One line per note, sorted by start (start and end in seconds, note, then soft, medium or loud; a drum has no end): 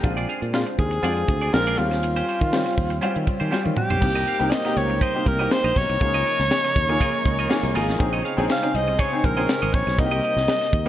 0.03 0.25 A#1 medium
0.03 0.36 G#3 medium
0.03 0.37 C4 medium
0.03 0.37 D4 medium
0.03 0.37 F4 medium
0.03 muted clean electric guitar stroke soft
0.03 kick loud
0.03 closed hi-hat medium
0.03 shaker medium
0.17 0.27 F4 medium
0.17 0.28 G#4 medium
0.17 0.29 D5 medium
0.17 closed hi-hat medium
0.17 shaker soft
0.28 0.44 F4 medium
0.28 0.41 G#4 medium
0.28 0.41 F5 medium
0.28 closed hi-hat medium
0.28 shaker soft
0.42 0.63 A#2 medium
0.42 muted clean electric guitar stroke soft
0.42 closed hi-hat soft
0.42 shaker soft
0.53 0.87 G#3 medium
0.53 0.87 C4 medium
0.53 0.87 D4 medium
0.53 0.65 F4 medium
0.53 0.87 F4 medium
0.53 muted clean electric guitar stroke soft
0.53 snare medium
0.53 shaker medium
0.67 muted clean electric guitar stroke soft
0.67 closed hi-hat soft
0.67 shaker soft
0.78 1.00 D#2 medium
0.78 1.55 G#4 loud
0.78 kick medium
0.78 closed hi-hat medium
0.78 shaker soft
0.91 muted clean electric guitar stroke soft
0.91 closed hi-hat medium
0.91 shaker soft
1.02 1.24 F2 medium
1.02 1.36 G#3 medium
1.02 1.36 C4 medium
1.02 1.36 D4 medium
1.02 1.22 F4 medium
1.02 1.37 F4 medium
1.02 1.16 G#4 medium
1.02 1.16 D5 medium
1.02 closed hi-hat loud
1.02 shaker medium
1.17 muted clean electric guitar stroke soft
1.17 closed hi-hat medium
1.17 shaker soft
1.28 1.49 D2 medium
1.28 muted clean electric guitar stroke soft
1.28 kick medium
1.28 closed hi-hat medium
1.28 shaker soft
1.41 1.52 F4 soft
1.41 1.52 G#4 soft
1.41 1.52 D5 medium
1.41 closed hi-hat soft
1.41 shaker soft
1.52 1.75 A#1 loud
1.52 1.78 G#3 medium
1.52 1.76 C4 medium
1.52 1.78 D4 medium
1.52 1.77 F4 medium
1.52 1.80 A#4 loud
1.52 muted clean electric guitar stroke soft
1.52 snare loud
1.52 shaker medium
1.67 1.78 F4 medium
1.67 1.79 G#4 medium
1.67 1.79 D5 medium
1.67 closed hi-hat soft
1.67 shaker medium
1.78 2.21 D#2 medium
1.78 2.38 G3 medium
1.78 2.38 C4 medium
1.78 2.39 C#4 medium
1.78 3.52 F4 loud
1.78 2.39 F4 medium
1.78 muted clean electric guitar stroke soft
1.78 closed hi-hat medium
1.78 shaker soft
1.91 muted clean electric guitar stroke soft
1.91 snare soft
1.91 closed hi-hat soft
1.91 shaker soft
2.03 muted clean electric guitar stroke soft
2.03 closed hi-hat medium
2.03 shaker medium
2.16 2.27 C#4 medium
2.16 2.27 G4 medium
2.16 2.27 C5 medium
2.16 closed hi-hat soft
2.16 shaker soft
2.28 2.43 C#4 medium
2.28 2.41 G4 medium
2.28 2.40 C5 medium
2.28 closed hi-hat medium
2.28 shaker soft
2.41 2.62 D#3 medium
2.41 muted clean electric guitar stroke soft
2.41 kick medium
2.41 closed hi-hat soft
2.41 shaker soft
2.52 2.86 G3 medium
2.52 2.86 C4 medium
2.52 2.86 C#4 medium
2.52 2.87 F4 medium
2.52 muted clean electric guitar stroke soft
2.52 snare loud
2.52 shaker medium
2.66 muted clean electric guitar stroke soft
2.66 snare soft
2.66 closed hi-hat soft
2.66 shaker soft
2.78 2.99 D#2 medium
2.78 kick medium
2.78 open hi-hat medium
2.78 shaker soft
2.90 muted clean electric guitar stroke soft
2.90 closed hi-hat medium
2.90 shaker soft
3.01 3.36 G3 medium
3.01 3.36 C4 medium
3.01 3.21 C#4 medium
3.01 3.36 C#4 medium
3.01 3.36 F4 loud
3.01 3.15 G4 medium
3.01 3.14 C5 medium
3.01 closed hi-hat medium
3.01 shaker medium
3.15 3.26 D#3 medium
3.15 muted clean electric guitar stroke soft
3.15 closed hi-hat medium
3.15 shaker soft
3.27 muted clean electric guitar stroke soft
3.27 kick medium
3.27 closed hi-hat medium
3.27 shaker soft
3.40 3.51 D#3 medium
3.40 3.50 C#4 soft
3.40 3.51 G4 soft
3.40 3.51 C5 medium
3.40 closed hi-hat medium
3.40 shaker soft
3.51 3.85 G3 medium
3.51 3.85 C4 medium
3.51 3.85 C#4 medium
3.51 3.71 C#4 medium
3.51 3.85 F4 medium
3.51 3.65 G4 medium
3.51 3.64 C5 medium
3.51 snare soft
3.51 shaker medium
3.65 3.76 D#3 loud
3.65 muted clean electric guitar stroke soft
3.65 high tom medium
3.65 shaker medium
3.77 4.53 G4 loud
3.77 muted clean electric guitar stroke soft
3.77 mid tom medium
3.77 shaker soft
3.90 4.00 B1 medium
3.90 4.02 C#4 soft
3.90 4.01 G4 medium
3.90 4.02 C5 medium
3.90 floor tom medium
3.90 shaker soft
4.00 4.23 C2 loud
4.00 5.99 C3 medium
4.00 5.99 G3 medium
4.00 4.26 A#3 medium
4.00 5.99 A#3 medium
4.00 4.26 C4 medium
4.00 4.26 D#4 medium
4.00 10.89 D#4 medium
4.00 4.26 G4 medium
4.00 muted clean electric guitar stroke soft
4.00 kick loud
4.00 crash medium
4.00 shaker medium
4.15 4.26 G4 medium
4.15 4.26 A#4 medium
4.15 4.28 D#5 medium
4.15 shaker soft
4.25 4.42 G4 medium
4.25 4.40 A#4 medium
4.25 4.40 F5 medium
4.25 closed hi-hat medium
4.25 shaker soft
4.39 4.50 C2 medium
4.39 4.55 A#3 medium
4.39 4.56 C4 medium
4.39 4.56 D#4 medium
4.39 4.56 G4 medium
4.39 shaker soft
4.51 4.78 D#5 medium
4.51 muted clean electric guitar stroke soft
4.51 snare loud
4.51 closed hi-hat medium
4.51 shaker medium
4.65 4.97 A#3 medium
4.65 4.97 C4 medium
4.65 4.97 D#4 medium
4.65 4.98 G4 loud
4.65 muted clean electric guitar stroke soft
4.65 snare soft
4.65 shaker soft
4.77 4.98 C#2 medium
4.77 5.04 C#5 medium
4.77 closed hi-hat medium
4.89 muted clean electric guitar stroke soft
4.89 shaker soft
5.01 5.20 G4 medium
5.01 5.14 A#4 medium
5.01 5.29 C5 medium
5.01 5.14 D#5 medium
5.01 kick loud
5.01 closed hi-hat loud
5.01 shaker medium
5.14 5.30 A#3 medium
5.14 5.31 C4 medium
5.14 5.31 D#4 medium
5.14 5.31 G4 medium
5.14 muted clean electric guitar stroke soft
5.14 shaker medium
5.26 5.47 C2 medium
5.26 5.54 A#4 loud
5.26 muted clean electric guitar stroke soft
5.26 kick loud
5.26 closed hi-hat medium
5.26 shaker soft
5.39 5.80 A#3 medium
5.39 5.80 C4 medium
5.39 5.80 D#4 medium
5.39 5.50 G4 soft
5.39 5.80 G4 medium
5.39 5.50 A#4 medium
5.39 5.50 D#5 medium
5.39 shaker soft
5.50 5.79 C5 loud
5.50 muted clean electric guitar stroke soft
5.50 snare loud
5.50 closed hi-hat medium
5.50 shaker medium
5.64 5.74 A#1 medium
5.64 5.75 G4 medium
5.64 5.75 A#4 medium
5.64 5.75 D#5 medium
5.64 shaker medium
5.75 5.88 B1 medium
5.75 7.76 C#5 loud
5.75 muted clean electric guitar stroke soft
5.75 kick medium
5.75 open hi-hat medium
5.75 shaker soft
5.89 5.99 C2 medium
5.89 muted clean electric guitar stroke medium
5.89 shaker soft
6.00 6.22 C#2 loud
6.00 7.98 C#3 medium
6.00 7.98 F3 medium
6.00 6.58 A#3 medium
6.00 7.98 A#3 medium
6.00 6.58 D#4 medium
6.00 6.58 F4 medium
6.00 6.59 G#4 medium
6.00 muted clean electric guitar stroke soft
6.00 kick loud
6.00 closed hi-hat medium
6.00 shaker medium
6.14 6.25 F4 medium
6.14 6.25 A#4 medium
6.14 6.26 D#5 medium
6.14 shaker soft
6.25 6.41 F4 medium
6.25 6.39 A#4 medium
6.25 6.39 D#5 medium
6.25 closed hi-hat medium
6.25 shaker soft
6.39 6.49 C#2 medium
6.39 muted clean electric guitar stroke soft
6.39 snare soft
6.39 shaker soft
6.51 muted clean electric guitar stroke soft
6.51 snare loud
6.51 closed hi-hat medium
6.51 shaker medium
6.64 muted clean electric guitar stroke soft
6.64 snare soft
6.64 shaker soft
6.76 6.97 D#2 medium
6.76 kick loud
6.76 closed hi-hat medium
6.88 7.29 A#3 medium
6.88 7.29 D#4 medium
6.88 7.29 F4 medium
6.88 7.29 G#4 medium
6.88 muted clean electric guitar stroke soft
6.88 shaker medium
7.00 7.19 F4 medium
7.00 7.14 A#4 medium
7.00 7.13 D#5 loud
7.00 kick medium
7.00 closed hi-hat loud
7.00 shaker medium
7.14 muted clean electric guitar stroke soft
7.14 shaker medium
7.25 7.46 C#2 medium
7.25 muted clean electric guitar stroke soft
7.25 kick loud
7.25 closed hi-hat medium
7.25 shaker soft
7.39 7.53 F4 medium
7.39 7.53 A#4 medium
7.39 7.52 D#5 medium
7.39 shaker soft
7.49 7.67 A#3 medium
7.49 7.67 D#4 medium
7.49 7.67 F4 medium
7.49 7.67 G#4 medium
7.49 snare loud
7.49 closed hi-hat medium
7.49 shaker medium
7.63 7.73 C2 medium
7.63 muted clean electric guitar stroke medium
7.63 shaker medium
7.74 7.86 G#1 medium
7.74 7.91 A#3 medium
7.74 7.92 D#4 medium
7.74 7.94 F4 medium
7.74 7.92 F4 medium
7.74 7.92 G#4 medium
7.74 8.20 G#4 medium
7.74 7.88 A#4 medium
7.74 7.87 D#5 medium
7.74 open hi-hat medium
7.74 shaker medium
7.88 7.98 A1 medium
7.88 muted clean electric guitar stroke soft
7.88 snare soft
7.88 shaker soft
7.99 8.21 A#1 loud
7.99 9.96 C#3 medium
7.99 9.96 G#3 medium
7.99 8.24 C4 medium
7.99 8.24 C#4 medium
7.99 8.24 D#4 medium
7.99 8.24 G#4 medium
7.99 9.96 C5 medium
7.99 muted clean electric guitar stroke soft
7.99 kick loud
7.99 closed hi-hat medium
7.99 shaker medium
8.13 8.23 G#4 medium
8.13 8.23 C#5 medium
8.13 8.25 D#5 medium
8.13 shaker soft
8.23 8.40 G#4 medium
8.23 8.38 C#5 medium
8.23 8.38 F5 medium
8.23 closed hi-hat medium
8.23 shaker soft
8.37 8.48 A#1 loud
8.37 8.53 C4 medium
8.37 8.53 C#4 medium
8.37 8.53 D#4 medium
8.37 8.54 G#4 loud
8.37 muted clean electric guitar stroke soft
8.37 shaker soft
8.49 8.77 F5 loud
8.49 muted clean electric guitar stroke soft
8.49 snare loud
8.49 closed hi-hat medium
8.49 shaker medium
8.62 8.94 C4 medium
8.62 8.94 C#4 medium
8.62 8.95 D#4 medium
8.62 8.95 G#4 medium
8.62 muted clean electric guitar stroke soft
8.62 shaker soft
8.74 8.95 C2 loud
8.74 9.01 D#5 loud
8.74 closed hi-hat medium
8.88 muted clean electric guitar stroke medium
8.88 shaker medium
8.99 9.18 G#4 medium
8.99 9.12 C#5 medium
8.99 9.27 C#5 medium
8.99 9.11 D#5 medium
8.99 kick loud
8.99 closed hi-hat loud
8.99 shaker medium
9.12 9.28 C4 medium
9.12 9.28 C#4 medium
9.12 9.28 D#4 medium
9.12 9.28 G#4 medium
9.12 muted clean electric guitar stroke soft
9.12 shaker medium
9.23 9.45 A#1 medium
9.23 9.76 A#4 medium
9.23 muted clean electric guitar stroke soft
9.23 kick medium
9.23 closed hi-hat medium
9.23 shaker soft
9.37 9.77 C4 medium
9.37 9.77 C#4 medium
9.37 9.77 D#4 medium
9.37 9.78 G#4 medium
9.37 9.48 G#4 medium
9.37 9.48 C#5 medium
9.37 9.48 D#5 medium
9.37 shaker medium
9.48 muted clean electric guitar stroke soft
9.48 snare loud
9.48 closed hi-hat medium
9.48 shaker medium
9.62 9.72 G#1 loud
9.62 9.72 G#4 medium
9.62 9.73 C#5 medium
9.62 9.73 D#5 medium
9.62 shaker medium
9.72 9.85 A#1 medium
9.72 10.01 C#5 loud
9.72 kick medium
9.72 open hi-hat medium
9.72 shaker medium
9.86 9.98 B1 medium
9.86 muted clean electric guitar stroke soft
9.86 snare soft
9.86 shaker soft
9.97 10.19 C2 loud
9.97 10.89 C3 medium
9.97 10.89 G3 medium
9.97 10.56 A#3 medium
9.97 10.89 A#3 medium
9.97 10.56 C4 medium
9.97 10.56 D#4 medium
9.97 10.05 F#4 medium
9.97 10.89 D#5 loud
9.97 muted clean electric guitar stroke soft
9.97 kick loud
9.97 closed hi-hat medium
9.97 shaker medium
10.06 10.59 G4 medium
10.11 10.22 G4 medium
10.11 10.23 A#4 medium
10.11 10.23 D#5 loud
10.11 shaker medium
10.22 10.38 G4 medium
10.22 10.36 A#4 medium
10.22 10.36 D#5 medium
10.22 closed hi-hat medium
10.22 shaker medium
10.35 10.46 C2 medium
10.35 muted clean electric guitar stroke soft
10.35 snare soft
10.35 shaker soft
10.48 muted clean electric guitar stroke soft
10.48 snare loud
10.48 closed hi-hat medium
10.48 shaker medium
10.61 muted clean electric guitar stroke soft
10.61 snare soft
10.61 shaker medium
10.73 10.89 D#2 medium
10.73 kick loud
10.73 closed hi-hat medium
10.85 10.89 A#3 medium
10.85 shaker medium